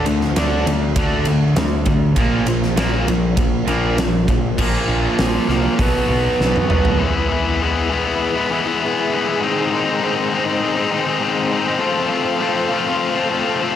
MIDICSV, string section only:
0, 0, Header, 1, 2, 480
1, 0, Start_track
1, 0, Tempo, 602410
1, 1731, Time_signature, 4, 2, 24, 8
1, 10962, End_track
2, 0, Start_track
2, 0, Title_t, "String section"
2, 0, Program_c, 0, 48
2, 5575, Note_on_c, 0, 71, 73
2, 5576, Note_on_c, 0, 83, 91
2, 5578, Note_on_c, 0, 76, 72
2, 5584, Note_on_c, 0, 68, 83
2, 7474, Note_off_c, 0, 71, 0
2, 7474, Note_off_c, 0, 83, 0
2, 7475, Note_off_c, 0, 76, 0
2, 7496, Note_on_c, 0, 75, 77
2, 7500, Note_on_c, 0, 84, 94
2, 7502, Note_on_c, 0, 72, 78
2, 9381, Note_off_c, 0, 68, 0
2, 9390, Note_off_c, 0, 75, 0
2, 9397, Note_on_c, 0, 69, 83
2, 9402, Note_on_c, 0, 77, 80
2, 10962, Note_off_c, 0, 69, 0
2, 10962, Note_off_c, 0, 72, 0
2, 10962, Note_off_c, 0, 77, 0
2, 10962, Note_off_c, 0, 84, 0
2, 10962, End_track
0, 0, End_of_file